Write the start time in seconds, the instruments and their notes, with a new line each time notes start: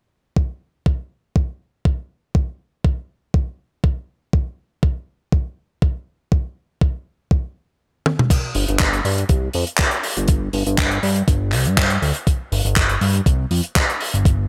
0.36 kick
0.86 kick
1.36 kick
1.85 kick
2.35 kick
2.85 kick
3.34 kick
3.84 kick
4.33 kick
4.83 kick
5.32 kick
5.82 kick
6.32 kick
6.81 kick
7.31 kick
8.06 high tom
8.19 mid tom
8.30 kick, closed hi-hat, crash
8.55 analog synth bass G1, open hi-hat
8.68 analog synth bass G1, closed hi-hat
8.79 kick, clap, closed hi-hat
8.93 closed hi-hat
9.05 analog synth bass G2, open hi-hat
9.18 closed hi-hat
9.29 analog synth bass C2, kick, closed hi-hat
9.53 analog synth bass F2, open hi-hat
9.67 closed hi-hat
9.77 kick, clap, closed hi-hat
9.91 closed hi-hat
10.03 open hi-hat
10.17 analog synth bass G1, closed hi-hat
10.28 kick, closed hi-hat
10.53 analog synth bass G1, open hi-hat
10.66 analog synth bass G1, closed hi-hat
10.78 kick, clap, closed hi-hat
10.91 closed hi-hat
11.03 analog synth bass G2, open hi-hat
11.16 closed hi-hat
11.28 analog synth bass G1, kick, closed hi-hat
11.52 analog synth bass C2, clap, open hi-hat
11.65 analog synth bass G2, closed hi-hat
11.77 kick, clap, closed hi-hat
11.90 closed hi-hat
12.02 analog synth bass D2, open hi-hat
12.15 closed hi-hat
12.27 kick, closed hi-hat
12.52 analog synth bass G1, open hi-hat
12.65 analog synth bass G1, closed hi-hat
12.76 kick, clap, closed hi-hat
12.89 closed hi-hat
13.01 analog synth bass G2, open hi-hat
13.15 closed hi-hat
13.26 analog synth bass C2, kick, closed hi-hat
13.51 analog synth bass F2, open hi-hat
13.64 closed hi-hat
13.76 kick, clap, closed hi-hat
13.90 closed hi-hat
14.01 open hi-hat
14.14 analog synth bass G1, closed hi-hat
14.25 kick, closed hi-hat